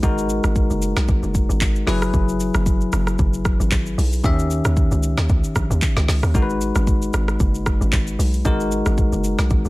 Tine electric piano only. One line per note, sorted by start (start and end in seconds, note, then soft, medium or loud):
0.03 1.83 G#3 medium
0.03 1.84 D#4 medium
0.03 1.84 F#4 medium
0.03 1.84 A#4 medium
1.87 3.94 F#3 medium
1.87 3.94 E4 medium
1.87 3.94 G#4 medium
1.87 3.95 B4 medium
4.24 6.31 D#3 medium
4.24 6.31 C#4 medium
4.24 6.31 G4 medium
4.24 6.32 E5 medium
6.34 8.41 G#3 medium
6.34 8.41 D#4 medium
6.34 8.42 F#4 medium
6.34 6.42 A#4 medium
6.42 8.45 B4 medium
8.45 9.69 G#3 medium
8.45 9.69 D#4 medium
8.45 9.69 F#4 medium
8.45 9.69 A#4 medium